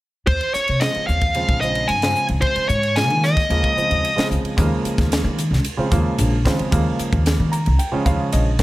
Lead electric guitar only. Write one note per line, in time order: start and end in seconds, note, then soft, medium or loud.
0.27 0.54 C5 medium
0.54 0.82 C#5 medium
0.80 1.06 D#5 medium
1.07 1.60 F5 medium
1.61 1.89 D#5 medium
1.88 2.26 G#5 medium
2.41 2.68 C5 medium
2.69 2.97 C#5 medium
2.96 3.24 G#5 medium
3.24 4.27 D#5 medium